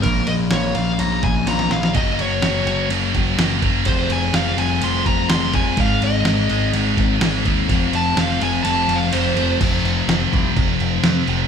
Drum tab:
CC |----------------|----------------|----------------|----------------|
RD |x-x-x-x-x-x-x-x-|x-x-x-x-x-x-x-x-|x-x-x-x-x-x-x-x-|x-x-x-x-x-x-x-x-|
SD |----o-------oooo|----o-------o---|----o-------o---|----o-------o---|
BD |o---------o-----|o---------o---o-|o---------o---o-|o---------o---o-|

CC |----------------|x-x-x-x-x-x-x-x-|
RD |x-x-x-x-x-x-x-x-|----------------|
SD |----o-----------|----oo------o---|
BD |o---------------|o-----o-o-------|